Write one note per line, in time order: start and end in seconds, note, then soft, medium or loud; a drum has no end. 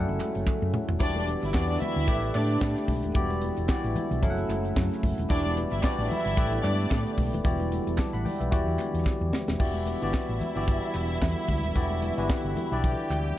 0.00 0.99 C#3 medium
0.00 0.86 F#3 medium
0.00 0.99 F#3 medium
0.00 0.99 A3 medium
0.00 0.86 C#4 medium
0.00 0.86 E4 medium
0.00 0.98 E4 medium
0.00 0.86 A4 medium
0.00 0.86 F#5 loud
0.09 0.18 F#1 loud
0.20 clap medium
0.20 closed hi-hat medium
0.20 muted conga soft
0.20 high conga medium
0.35 0.45 F#1 medium
0.35 closed hi-hat soft
0.47 kick loud
0.47 clap loud
0.47 high tom medium
0.62 0.71 F#2 loud
0.74 mid tom loud
0.74 muted conga soft
0.74 high conga medium
0.89 0.99 D#1 medium
0.89 floor tom medium
0.89 high conga medium
0.99 1.34 E1 medium
0.99 4.19 D3 medium
0.99 1.47 E3 medium
0.99 2.07 G3 medium
0.99 2.07 B3 medium
0.99 1.22 D4 loud
0.99 1.47 E4 medium
0.99 2.07 E4 medium
0.99 1.47 F#4 medium
0.99 1.47 G4 medium
0.99 1.21 D5 loud
0.99 1.47 D5 loud
0.99 kick loud
0.99 closed hi-hat medium
1.16 closed hi-hat soft
1.16 high conga medium
1.27 closed hi-hat medium
1.27 high conga medium
1.42 1.52 G1 loud
1.42 1.52 E4 medium
1.42 1.52 E5 medium
1.42 closed hi-hat soft
1.54 1.76 E2 loud
1.54 2.08 E3 medium
1.54 1.67 D4 loud
1.54 2.07 E4 medium
1.54 2.08 F#4 medium
1.54 2.07 G4 medium
1.54 1.66 D5 loud
1.54 2.08 D5 medium
1.54 kick loud
1.54 snare loud
1.54 clap loud
1.54 muted conga soft
1.68 1.78 D4 medium
1.68 1.78 D5 loud
1.80 2.31 E4 medium
1.80 2.31 E5 loud
1.80 closed hi-hat medium
1.80 muted conga soft
1.80 high conga medium
1.80 low conga medium
1.96 2.06 D2 medium
1.96 closed hi-hat soft
2.07 2.30 A1 loud
2.07 3.00 A3 medium
2.07 3.15 A3 medium
2.07 4.21 B3 medium
2.07 3.00 E4 medium
2.07 3.00 G4 medium
2.07 3.15 G4 medium
2.07 3.01 B4 medium
2.07 3.01 D5 loud
2.07 kick loud
2.07 closed hi-hat medium
2.07 low conga medium
2.23 closed hi-hat soft
2.34 2.57 A2 medium
2.34 2.85 D4 medium
2.34 2.85 D5 medium
2.34 clap medium
2.34 closed hi-hat medium
2.34 high conga medium
2.49 closed hi-hat soft
2.61 2.74 A2 loud
2.61 kick loud
2.61 snare loud
2.61 clap medium
2.76 snare soft
2.76 closed hi-hat soft
2.88 3.00 B1 medium
2.88 kick medium
2.88 open hi-hat medium
2.88 high conga medium
3.03 3.13 D#1 medium
3.03 closed hi-hat soft
3.03 high conga medium
3.14 3.49 E1 loud
3.14 3.61 E3 medium
3.14 4.21 G3 medium
3.14 3.62 E4 medium
3.14 6.34 E4 medium
3.14 3.62 F#4 medium
3.14 3.62 G4 medium
3.14 3.62 D5 loud
3.14 kick loud
3.14 closed hi-hat medium
3.30 closed hi-hat soft
3.30 high conga medium
3.41 closed hi-hat medium
3.41 high conga medium
3.57 3.67 E1 medium
3.57 closed hi-hat soft
3.68 4.22 E3 medium
3.68 4.22 E4 medium
3.68 4.23 F#4 medium
3.68 4.23 G4 medium
3.68 4.23 D5 medium
3.68 kick loud
3.68 snare loud
3.68 clap loud
3.68 muted conga soft
3.84 3.93 A1 medium
3.84 closed hi-hat soft
3.96 closed hi-hat medium
3.96 muted conga soft
3.96 high conga medium
3.96 low conga medium
4.11 4.20 B1 medium
4.11 closed hi-hat soft
4.22 4.44 F#1 medium
4.22 5.29 C#3 medium
4.22 5.15 F#3 loud
4.22 5.29 F#3 medium
4.22 5.29 A3 medium
4.22 5.15 C#4 medium
4.22 5.15 E4 loud
4.22 5.15 A4 medium
4.22 4.30 F5 medium
4.22 kick loud
4.22 closed hi-hat medium
4.22 muted conga soft
4.22 low conga medium
4.30 5.19 F#5 loud
4.37 closed hi-hat soft
4.49 4.70 F#1 medium
4.49 clap medium
4.49 closed hi-hat medium
4.49 muted conga soft
4.49 high conga medium
4.65 closed hi-hat soft
4.76 4.88 F#2 loud
4.76 kick loud
4.76 snare loud
4.76 clap loud
4.76 muted conga soft
4.92 snare soft
4.92 closed hi-hat soft
5.03 5.15 F#1 loud
5.03 kick medium
5.03 open hi-hat medium
5.03 high conga loud
5.18 5.27 D#1 loud
5.18 closed hi-hat soft
5.18 high conga medium
5.29 5.64 E1 loud
5.29 8.50 D3 medium
5.29 5.76 E3 medium
5.29 6.37 G3 medium
5.29 9.57 B3 medium
5.29 5.51 D4 loud
5.29 5.77 E4 medium
5.29 5.77 F#4 medium
5.29 5.77 G4 medium
5.29 5.51 D5 loud
5.29 5.77 D5 loud
5.29 kick loud
5.29 closed hi-hat medium
5.29 muted conga soft
5.46 closed hi-hat soft
5.46 high conga medium
5.57 closed hi-hat medium
5.57 high conga medium
5.71 5.81 G1 medium
5.71 5.81 E4 medium
5.71 5.81 E5 medium
5.71 closed hi-hat soft
5.83 6.37 E3 medium
5.83 5.96 D4 medium
5.83 6.36 E4 medium
5.83 6.37 F#4 medium
5.83 6.36 G4 medium
5.83 5.96 D5 loud
5.83 6.37 D5 loud
5.83 kick loud
5.83 snare loud
5.83 clap loud
5.83 muted conga soft
5.98 6.08 A1 loud
5.98 6.08 D4 medium
5.98 6.08 D5 medium
5.98 closed hi-hat soft
6.09 6.61 E4 loud
6.09 6.60 E5 loud
6.09 closed hi-hat medium
6.09 muted conga soft
6.09 high conga medium
6.09 low conga medium
6.25 6.35 G1 medium
6.25 closed hi-hat soft
6.37 6.59 A1 medium
6.37 7.30 A3 medium
6.37 7.44 A3 medium
6.37 7.30 E4 medium
6.37 7.30 G4 medium
6.37 7.44 G4 medium
6.37 7.30 B4 medium
6.37 7.30 D5 loud
6.37 kick loud
6.37 closed hi-hat medium
6.37 low conga medium
6.53 closed hi-hat soft
6.62 6.86 G2 loud
6.62 7.13 D4 medium
6.62 7.13 D5 loud
6.62 clap medium
6.62 closed hi-hat medium
6.62 muted conga soft
6.62 high conga medium
6.80 closed hi-hat soft
6.91 7.03 A2 loud
6.91 kick loud
6.91 snare loud
6.91 clap medium
6.91 muted conga soft
7.07 closed hi-hat soft
7.18 7.30 B1 medium
7.18 kick medium
7.18 open hi-hat medium
7.18 muted conga soft
7.18 high conga medium
7.33 7.42 D#1 loud
7.33 closed hi-hat soft
7.33 high conga medium
7.44 7.78 E1 loud
7.44 7.91 E3 medium
7.44 9.59 G3 medium
7.44 7.91 E4 medium
7.44 9.58 E4 medium
7.44 7.91 F#4 medium
7.44 7.92 G4 medium
7.44 7.72 D5 loud
7.44 kick loud
7.44 closed hi-hat medium
7.60 closed hi-hat soft
7.60 high conga medium
7.72 closed hi-hat medium
7.72 high conga medium
7.87 7.96 E1 medium
7.87 closed hi-hat soft
7.98 8.13 A5 medium
7.98 8.13 D6 medium
7.98 kick loud
7.98 snare loud
7.98 clap loud
7.98 muted conga soft
8.13 8.23 A1 medium
8.13 8.25 F#5 medium
8.13 8.25 B5 medium
8.13 closed hi-hat soft
8.25 8.40 D5 medium
8.25 8.39 G5 medium
8.25 open hi-hat medium
8.25 high conga medium
8.25 low conga medium
8.40 8.50 B1 medium
8.40 8.66 B4 medium
8.40 8.66 E5 medium
8.40 closed hi-hat medium
8.51 8.64 E1 medium
8.51 9.60 D3 medium
8.51 9.44 E3 loud
8.51 9.44 E4 medium
8.51 9.45 F#4 medium
8.51 9.45 G4 medium
8.51 9.45 D5 loud
8.51 kick loud
8.51 closed hi-hat medium
8.51 muted conga soft
8.51 low conga medium
8.67 8.77 E2 medium
8.79 clap medium
8.79 closed hi-hat medium
8.79 high conga medium
8.94 9.04 E2 medium
8.94 closed hi-hat soft
9.06 kick loud
9.06 snare medium
9.06 clap medium
9.21 9.31 E2 loud
9.21 low conga medium
9.33 snare loud
9.33 muted conga soft
9.33 high conga medium
9.48 9.57 D#1 loud
9.48 snare medium
9.48 high conga medium
9.59 9.94 E1 medium
9.59 13.38 D3 medium
9.59 9.95 E3 medium
9.59 13.38 G3 medium
9.59 13.38 B3 medium
9.59 12.79 E4 medium
9.59 9.95 E4 medium
9.59 11.74 E4 medium
9.59 9.95 F#4 medium
9.59 9.95 G4 medium
9.59 9.95 D5 medium
9.59 12.79 E5 medium
9.59 kick loud
9.59 crash medium
9.59 muted conga soft
9.74 high conga medium
9.86 closed hi-hat medium
9.86 high conga medium
10.02 10.12 G1 medium
10.02 10.47 E3 medium
10.02 10.47 E4 medium
10.02 10.47 F#4 medium
10.02 10.47 G4 medium
10.02 10.47 D5 loud
10.02 closed hi-hat soft
10.14 kick loud
10.14 snare loud
10.14 clap medium
10.29 10.38 A1 medium
10.41 closed hi-hat medium
10.41 muted conga soft
10.41 high conga medium
10.41 low conga medium
10.55 10.77 G1 medium
10.55 11.46 E3 medium
10.55 11.46 E4 medium
10.55 11.46 F#4 medium
10.55 11.46 G4 medium
10.55 11.47 D5 medium
10.55 closed hi-hat soft
10.68 kick loud
10.68 closed hi-hat medium
10.68 low conga medium
10.94 11.16 E1 medium
10.94 clap medium
10.94 closed hi-hat medium
10.94 high conga medium
11.10 closed hi-hat soft
11.21 11.34 E2 loud
11.21 kick medium
11.21 snare loud
11.21 clap medium
11.21 muted conga soft
11.48 11.61 D2 medium
11.48 kick medium
11.48 open hi-hat medium
11.48 muted conga soft
11.48 high conga medium
11.64 11.73 D#1 medium
11.64 closed hi-hat soft
11.64 high conga medium
11.75 12.09 E1 medium
11.75 12.11 E3 medium
11.75 13.38 E4 medium
11.75 12.11 E4 medium
11.75 12.11 F#4 medium
11.75 12.11 G4 medium
11.75 12.11 D5 medium
11.75 kick loud
11.75 closed hi-hat medium
11.75 muted conga soft
11.90 high conga medium
12.02 closed hi-hat medium
12.02 muted conga soft
12.02 high conga medium
12.18 12.27 G1 medium
12.18 12.63 E3 medium
12.18 12.63 E4 medium
12.18 12.63 F#4 medium
12.18 12.63 G4 medium
12.18 12.63 B4 loud
12.18 closed hi-hat soft
12.29 kick loud
12.29 snare loud
12.29 clap loud
12.29 muted conga soft
12.44 12.54 G1 medium
12.57 closed hi-hat medium
12.57 muted conga soft
12.57 high conga medium
12.57 low conga medium
12.72 12.93 B1 medium
12.72 13.38 E3 medium
12.72 13.38 D4 medium
12.72 13.38 E4 medium
12.72 13.38 G4 medium
12.72 13.38 D5 loud
12.72 closed hi-hat soft
12.84 13.38 G4 medium
12.84 13.38 G5 medium
12.84 kick loud
12.84 closed hi-hat medium
12.84 muted conga soft
12.84 low conga medium
12.99 closed hi-hat soft
13.10 13.32 D2 medium
13.10 clap medium
13.10 closed hi-hat medium
13.10 muted conga soft
13.10 high conga medium
13.26 closed hi-hat soft